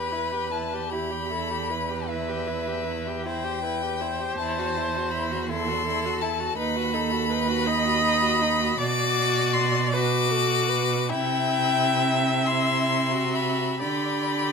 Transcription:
0.00 4.35 E2 medium
0.00 0.14 G4 medium
0.00 0.88 B4 medium
0.00 0.53 B5 medium
0.12 0.33 E4 medium
0.32 0.51 G4 medium
0.52 0.75 E4 medium
0.52 0.92 A5 medium
0.73 0.94 G4 soft
0.91 1.13 E4 medium
0.91 1.32 G4 medium
0.91 2.10 B5 medium
1.11 1.31 G4 soft
1.31 1.52 E4 medium
1.31 1.72 A4 medium
1.51 1.72 G4 medium
1.71 1.91 E4 medium
1.71 3.26 B4 medium
1.89 2.09 G4 medium
2.09 2.30 E4 medium
2.09 3.25 E5 medium
2.29 2.49 G4 medium
2.47 2.69 E4 medium
2.68 2.86 G4 medium
2.87 3.09 E4 medium
3.08 3.27 G4 medium
3.25 3.46 E4 medium
3.25 3.65 C5 medium
3.25 4.36 G5 loud
3.44 3.63 G4 medium
3.63 3.84 E4 medium
3.63 4.02 B4 medium
3.82 4.03 G4 medium
4.01 4.22 E4 medium
4.01 5.50 C5 medium
4.21 4.39 G4 medium
4.38 6.54 E2 medium
4.38 4.61 E4 medium
4.38 5.13 A5 loud
4.59 4.79 F#4 medium
4.78 4.98 E4 medium
4.97 5.14 F#4 medium
5.11 5.33 E4 medium
5.11 5.48 B5 medium
5.31 5.51 F#4 medium
5.49 5.70 E4 medium
5.49 6.57 A4 medium
5.49 6.23 C6 loud
5.69 5.86 F#4 medium
5.87 6.07 E4 medium
6.06 6.24 F#4 medium
6.21 6.42 E4 medium
6.21 6.57 A5 loud
6.41 6.57 F#4 medium
6.57 8.75 D#2 medium
6.57 6.78 D#4 medium
6.57 6.96 B4 medium
6.57 8.79 B5 loud
6.76 6.95 F#4 medium
6.94 7.13 D#4 medium
6.94 7.32 A4 medium
7.12 7.29 F#4 medium
7.30 7.50 D#4 medium
7.30 7.68 B4 medium
7.49 7.69 F#4 medium
7.67 7.87 D#4 medium
7.67 8.79 D#5 loud
7.85 8.03 F#4 medium
8.04 8.23 D#4 medium
8.22 8.43 F#4 medium
8.42 8.62 D#4 medium
8.61 8.79 F#4 medium
8.78 11.12 B2 medium
8.78 9.90 F#4 medium
8.78 9.95 D5 loud
8.78 9.55 D6 loud
9.54 9.92 C6 loud
9.92 11.11 F#4 medium
9.92 10.33 B4 medium
9.92 11.11 D6 loud
10.31 10.70 A4 medium
10.69 11.11 B4 medium
11.09 13.82 C3 medium
11.09 12.45 E4 medium
11.09 13.81 E5 loud
11.09 12.47 G5 loud
12.46 13.14 E4 medium
12.46 13.36 C6 loud
13.13 13.80 F#4 medium
13.35 13.79 B5 medium
13.80 14.52 D3 medium
13.80 14.52 G4 medium
13.80 14.52 D5 medium
13.80 14.52 B5 loud

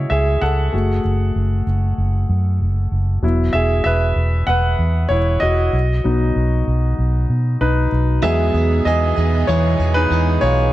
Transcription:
0.00 0.74 G#3 soft
0.00 0.75 C#4 soft
0.00 0.75 E4 medium
0.00 0.74 F#4 medium
0.00 0.75 C#5 medium
0.00 0.75 D#5 medium
0.10 0.36 C#2 medium
0.10 0.40 G#4 medium
0.10 0.42 E5 medium
0.41 0.68 C#2 medium
0.41 1.01 A4 medium
0.41 1.00 F#5 medium
0.73 0.99 F#1 medium
0.73 1.63 A3 soft
0.73 1.63 F#4 soft
0.73 1.63 G#4 soft
1.05 1.30 F#1 medium
1.36 1.61 F#1 medium
1.67 1.93 F#1 medium
1.98 2.24 F#1 medium
2.29 2.62 F#2 medium
2.60 2.86 F#1 medium
2.92 3.18 F#1 medium
3.23 3.49 E1 medium
3.23 5.69 F#3 soft
3.23 5.70 B3 soft
3.23 5.10 E4 medium
3.53 3.80 E1 medium
3.53 3.84 G#4 medium
3.53 3.82 E5 medium
3.84 4.11 E1 medium
3.84 4.45 B4 medium
3.84 4.44 E5 medium
4.16 4.42 E1 medium
4.47 4.74 E1 medium
4.47 5.07 B4 medium
4.47 5.12 F#5 medium
4.79 5.05 E2 medium
5.09 5.36 E1 medium
5.09 5.18 E4 medium
5.09 5.16 C#5 medium
5.40 5.68 E1 medium
5.40 7.89 F#4 medium
5.40 7.87 D#5 medium
5.73 5.99 B1 medium
6.04 6.31 B1 medium
6.04 8.19 F#3 soft
6.04 8.20 B3 soft
6.04 7.60 D#4 medium
6.36 6.62 B1 medium
6.67 6.93 B1 medium
6.99 7.24 B1 medium
7.30 7.55 B2 medium
7.61 7.87 B1 medium
7.61 8.20 D#4 medium
7.61 8.26 B4 medium
7.92 8.18 B1 medium
8.22 8.49 E2 medium
8.22 10.71 B2 medium
8.22 8.54 E3 medium
8.22 10.69 F#3 soft
8.22 10.70 G#3 soft
8.22 10.73 G#3 medium
8.22 8.55 B3 medium
8.22 10.71 B3 medium
8.22 10.70 B3 medium
8.22 8.55 D#4 medium
8.22 10.71 G#4 medium
8.22 8.82 G#4 medium
8.22 8.53 G#4 medium
8.22 8.88 E5 medium
8.54 8.80 E2 medium
8.54 8.85 B3 soft
8.54 8.86 D#4 soft
8.54 8.86 G#4 medium
8.85 9.11 E2 medium
8.85 9.17 E3 medium
8.85 9.18 B3 medium
8.85 9.17 D#4 medium
8.85 9.45 G#4 medium
8.85 9.15 G#4 medium
8.85 9.50 D#5 medium
9.16 9.43 E2 medium
9.16 9.48 B3 soft
9.16 9.49 D#4 medium
9.16 9.48 G#4 medium
9.47 9.74 E2 medium
9.47 9.80 E3 medium
9.47 9.93 E3 medium
9.47 9.80 B3 medium
9.47 9.80 D#4 medium
9.47 9.78 G#4 medium
9.47 9.96 C#5 medium
9.79 10.05 E2 medium
9.79 10.10 B3 soft
9.79 10.11 D#4 soft
9.79 10.11 G#4 soft
9.94 10.40 D#4 medium
9.94 10.43 B4 loud
10.10 10.36 E2 medium
10.10 10.42 E3 medium
10.10 10.42 B3 medium
10.10 10.41 D#4 medium
10.10 10.40 G#4 medium
10.41 10.73 B1 medium
10.41 10.73 B3 soft
10.41 10.73 D#4 medium
10.41 10.73 F4 medium
10.41 10.73 G#4 medium
10.41 10.73 C#5 medium

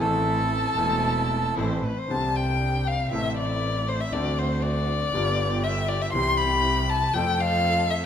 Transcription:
0.00 0.74 A1 medium
0.00 0.74 A2 medium
0.00 0.73 E3 medium
0.00 0.74 A3 medium
0.00 0.74 C4 medium
0.00 0.75 E4 medium
0.00 1.55 A4 medium
0.00 0.75 A4 medium
0.00 1.55 A5 medium
0.76 1.53 E1 medium
0.76 1.54 E1 medium
0.76 1.54 E2 medium
0.76 1.53 E3 medium
0.76 1.53 A3 medium
0.76 1.54 A3 medium
0.76 1.54 C4 medium
0.76 1.54 E4 medium
0.80 1.55 A4 medium
1.57 1.80 A1 medium
1.57 1.80 A2 medium
1.57 1.80 E3 medium
1.57 1.80 A3 medium
1.57 1.80 C4 medium
1.57 1.80 E4 medium
1.57 1.80 A4 medium
1.57 1.86 C5 medium
1.85 2.00 B4 medium
1.99 2.12 C5 medium
2.08 3.08 C2 medium
2.08 3.07 C3 medium
2.08 3.06 D3 medium
2.08 3.07 G3 medium
2.08 3.07 C4 medium
2.08 3.08 C4 soft
2.08 3.08 D4 medium
2.08 3.08 G4 medium
2.08 2.38 A5 medium
2.36 2.89 G5 medium
2.87 3.11 F5 medium
3.11 4.09 A1 medium
3.11 4.09 A2 medium
3.11 4.08 E3 medium
3.11 4.09 A3 medium
3.11 4.09 C4 medium
3.11 4.09 E4 medium
3.11 4.10 A4 medium
3.11 3.36 E5 medium
3.38 3.90 D5 loud
3.89 4.02 C5 medium
4.00 4.14 E5 medium
4.13 5.10 D2 medium
4.13 5.10 D3 medium
4.13 5.09 A3 medium
4.13 5.10 C4 medium
4.13 5.10 D4 medium
4.13 5.10 F#4 medium
4.13 5.11 F#4 medium
4.13 4.40 D5 medium
4.39 4.64 C5 medium
4.63 5.65 D5 loud
5.13 6.10 G1 medium
5.13 6.10 G2 medium
5.13 6.09 D3 medium
5.13 6.10 G3 medium
5.13 6.10 B3 medium
5.13 6.10 F4 medium
5.13 6.11 F4 medium
5.13 6.10 G4 medium
5.64 5.90 E5 loud
5.89 6.03 D5 medium
6.02 6.12 E5 medium
6.13 7.11 C2 medium
6.13 7.11 C3 medium
6.13 7.10 E3 medium
6.13 7.10 G3 medium
6.13 7.11 C4 medium
6.13 7.11 E4 medium
6.13 7.11 G4 medium
6.13 7.12 G4 medium
6.13 6.39 C6 loud
6.37 6.91 B5 loud
6.89 7.15 A5 loud
7.14 8.06 F2 medium
7.14 8.06 F3 medium
7.14 8.06 A3 medium
7.14 8.06 C4 medium
7.14 8.06 F4 medium
7.14 8.06 A4 medium
7.14 7.42 G5 loud
7.40 7.92 F5 loud
7.90 8.06 E5 medium

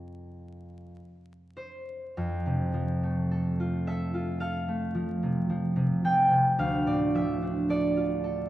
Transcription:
0.00 0.97 F2 soft
0.00 0.98 F3 soft
0.00 1.00 C4 soft
0.00 1.01 A4 soft
0.00 1.02 F5 medium
1.57 5.47 C5 medium
2.17 6.07 F2 medium
2.46 5.22 C3 soft
2.74 4.93 F3 soft
3.03 4.67 A3 soft
3.31 3.86 A4 medium
3.60 4.13 F4 soft
3.87 4.40 A4 medium
3.87 4.79 E5 medium
4.14 7.95 F4 medium
4.40 7.68 A4 medium
4.40 6.58 F5 medium
4.68 8.49 A3 soft
4.95 5.48 F3 medium
5.23 5.75 C3 soft
5.49 6.03 F3 soft
5.76 6.29 C3 medium
6.04 7.14 F3 soft
6.04 6.97 G5 medium
6.30 6.61 C3 soft
6.59 8.49 D2 medium
6.59 8.49 F5 medium
6.86 8.49 A2 soft
6.86 7.33 D5 medium
7.15 8.49 F3 soft
7.15 8.07 E5 medium
7.42 8.49 D4 soft
7.69 8.23 A4 soft
7.69 8.49 D5 medium
7.96 8.49 F4 soft
8.24 8.49 A4 soft

